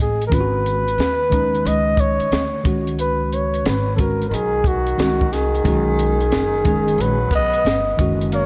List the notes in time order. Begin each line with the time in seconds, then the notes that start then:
Already playing: A1 D#5
0.02 G#4
0.21 closed hi-hat
0.27 D#3 G#3 A#4
0.32 G#1 C#4 F4 B4, kick, closed hi-hat
0.41 F#4
0.66 closed hi-hat
0.88 closed hi-hat
0.98 D#2, snare, closed hi-hat
1.30 D#3 G#3 C#4 D#4, kick, closed hi-hat
1.55 closed hi-hat
1.65 C#2 D#5, closed hi-hat
1.97 C#5, kick, closed hi-hat
2.20 muted upright bass stroke, closed hi-hat
2.32 D2, snare, closed hi-hat
2.63 C#2 D#3 G#3 C#4, kick, closed hi-hat
2.67 F#4
2.87 closed hi-hat
2.99 B4, closed hi-hat
3.33 C#5, closed hi-hat
3.54 closed hi-hat
3.66 G#1 B4, snare, closed hi-hat
3.96 D#3 G#3 C#4 A4, kick, closed hi-hat
4.00 F#4 A#4
4.22 closed hi-hat
4.29 B1 D#3 A#4
4.34 G#4, closed hi-hat
4.63 D#3, kick, closed hi-hat
4.67 F#4
4.87 closed hi-hat
4.97 C2 D#3 G#3 C#4 F#4, snare, closed hi-hat
5.21 kick
5.31 D#3 G#4, snare, closed hi-hat
5.55 closed hi-hat
5.64 B1 D#3 G#3 C#4 F#4, kick, closed hi-hat
5.99 closed hi-hat
6.20 closed hi-hat
6.32 F#1, snare, closed hi-hat
6.64 D#3 G#3 C#4 G#4, kick, closed hi-hat
6.88 closed hi-hat
6.98 A#1 F#3 B4, closed hi-hat
7.31 B1 B3, kick, closed hi-hat
7.35 D#5
7.53 closed hi-hat
7.65 G1, snare, closed hi-hat
7.97 F#1 D#3 G#3 C#4 F#4, kick, closed hi-hat
8.21 closed hi-hat
8.32 A#3 C#5, closed hi-hat